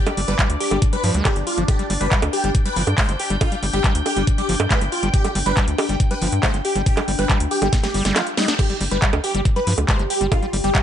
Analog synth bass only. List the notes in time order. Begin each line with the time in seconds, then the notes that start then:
0.17 G1
0.28 G1
0.50 D2
0.71 G1
1.04 G2
1.14 D2
1.36 G1
1.58 G1
1.90 G1
2.01 G1
2.22 D2
2.44 G1
2.76 G1
2.87 G2
3.09 G1
3.30 G1
3.63 G1
3.73 G1
3.95 D2
4.17 G1
4.49 G1
4.60 G2
4.81 G1
5.03 G1
5.35 G1
5.46 G1
5.68 D2
5.89 G1
6.22 G1
6.32 G2
6.54 G1
6.76 G1
7.08 G1
7.19 G1
7.40 D2
7.62 G1
7.94 G1
8.05 G1
8.81 G1
8.91 G1
9.13 D2
9.35 G1
9.67 G2
9.78 D2
9.99 G1
10.21 G1
10.53 G1
10.64 G1